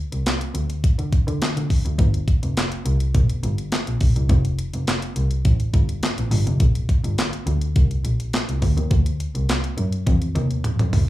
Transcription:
0.12 double bass C2, closed hi-hat
0.26 snare, clap, closed hi-hat
0.41 closed hi-hat
0.54 double bass D2, closed hi-hat
0.70 closed hi-hat
0.84 kick, closed hi-hat
0.99 double bass D3, closed hi-hat
1.13 kick, closed hi-hat
1.28 double bass D3, closed hi-hat
1.42 snare, clap, closed hi-hat
1.57 double bass D3, closed hi-hat
1.70 kick, open hi-hat
1.85 double bass D2, closed hi-hat
1.99 double bass G1, kick, closed hi-hat
2.14 closed hi-hat
2.28 kick, closed hi-hat
2.43 double bass F1, closed hi-hat
2.57 snare, clap, closed hi-hat
2.72 closed hi-hat
2.86 double bass C2, closed hi-hat
3.00 closed hi-hat
3.15 double bass A#1, kick, closed hi-hat
3.30 closed hi-hat
3.43 double bass G1, closed hi-hat
3.58 closed hi-hat
3.72 snare, clap, closed hi-hat
3.87 double bass A#1, closed hi-hat
4.01 double bass A#1, kick, open hi-hat
4.16 double bass C2, closed hi-hat
4.29 double bass F1, kick, closed hi-hat
4.45 closed hi-hat
4.59 closed hi-hat
4.74 double bass F1, closed hi-hat
4.87 snare, clap, closed hi-hat
5.02 closed hi-hat
5.16 double bass C2, closed hi-hat
5.31 closed hi-hat
5.45 double bass A1, kick, closed hi-hat
5.60 closed hi-hat
5.74 double bass G1, kick, closed hi-hat
5.89 closed hi-hat
6.03 snare, clap, closed hi-hat
6.18 double bass A1, closed hi-hat
6.31 double bass G1, open hi-hat
6.47 double bass F1, closed hi-hat
6.60 double bass A#1, kick, closed hi-hat
6.75 closed hi-hat
6.89 kick, closed hi-hat
7.04 double bass G1, closed hi-hat
7.18 snare, clap, closed hi-hat
7.33 closed hi-hat
7.47 double bass D2, closed hi-hat
7.61 closed hi-hat
7.76 double bass C2, kick, closed hi-hat
7.91 closed hi-hat
8.04 double bass A#1, closed hi-hat
8.20 closed hi-hat
8.33 snare, clap, closed hi-hat
8.49 double bass C2, closed hi-hat
8.62 double bass D2, kick, open hi-hat
8.77 double bass D#2, closed hi-hat
8.91 double bass D2, kick, closed hi-hat
9.06 closed hi-hat
9.20 closed hi-hat
9.35 double bass C2, closed hi-hat
9.49 snare, clap, closed hi-hat
9.64 closed hi-hat
9.78 double bass F#2, closed hi-hat
9.92 closed hi-hat
10.07 double bass F2, kick, closed hi-hat, high tom
10.22 closed hi-hat
10.35 double bass D#2, closed hi-hat, mid tom
10.51 closed hi-hat
10.64 closed hi-hat, mid tom
10.79 double bass F2, closed hi-hat, mid tom
10.93 double bass C2, floor tom, open hi-hat

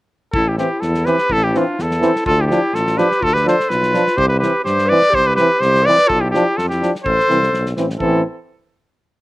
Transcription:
0.32 tuba A1, clarinet E4, cornet A4, kick
0.47 clarinet E4, cornet G4
0.58 euphonium E3, trombone C4, clarinet E4, cornet G4, snare
0.80 tuba E2, clarinet E4, cornet A4, snare
0.94 snare
1.05 euphonium E3, trombone C4, clarinet G4, cornet B4, snare
1.18 snare
1.30 tuba A1, clarinet E4, cornet A4, kick
1.43 clarinet E4, cornet G4
1.54 euphonium E3, trombone C4, clarinet D4, cornet F4, snare
1.77 tuba E2, clarinet E4, snare
1.82 cornet A4
1.91 snare
2.01 euphonium E3, trombone C4, snare
2.16 snare
2.26 tuba D2, clarinet F4, cornet A4, kick
2.40 clarinet E4, cornet G4
2.45 clarinet E4, cornet G4
2.50 euphonium F3, trombone D4, clarinet E4, snare
2.73 tuba A1, clarinet F4, cornet A4, snare
2.87 snare
2.97 euphonium F3, trombone D4, clarinet G4, cornet B4, snare
3.12 snare
3.20 tuba D2, clarinet F4, cornet A4, kick
3.33 clarinet G4, cornet B4, snare
3.45 euphonium F3, trombone D4, clarinet A4, cornet C5, snare
3.60 snare
3.69 tuba B1, clarinet F4, cornet B4, snare
3.83 snare
3.94 euphonium F3, trombone D4, snare
4.07 snare
4.17 tuba C2, clarinet G4, cornet C5, kick
4.29 clarinet G4, cornet B4
4.39 euphonium E3, trombone C4, clarinet G4, cornet B4, snare
4.63 tuba G2, clarinet G4, cornet C5, snare
4.79 snare
4.86 trombone C4, clarinet B4, cornet D5
4.91 euphonium E3
5.01 snare
5.10 tuba C2, clarinet G4, kick
5.15 cornet C5
5.22 clarinet G4
5.27 cornet B4
5.34 clarinet G4, cornet B4, snare
5.39 euphonium E3, trombone C4
5.59 tuba C2, clarinet G4, cornet C5, snare
5.75 snare
5.83 euphonium E3, clarinet B4, cornet D5
5.88 trombone C4
5.98 snare
6.07 tuba B1, clarinet F4, cornet A4, kick
6.19 clarinet E4, cornet G4
6.31 clarinet E4, cornet G4, snare
6.35 euphonium F3, trombone D4
6.56 tuba F2, clarinet F4, cornet A4, snare
6.69 clarinet E4, cornet G4, snare
6.82 euphonium F3, trombone D4, snare
6.95 snare
7.04 tuba A1, clarinet A4, cornet C5, kick
7.20 snare
7.29 tuba C2, euphonium E3, trombone C4, snare
7.43 snare
7.52 tuba B1, snare
7.66 snare
7.76 tuba A1, euphonium E3, trombone C4, snare
7.90 snare
7.99 tuba A1, euphonium E3, trombone C4, clarinet E4, cornet A4, kick

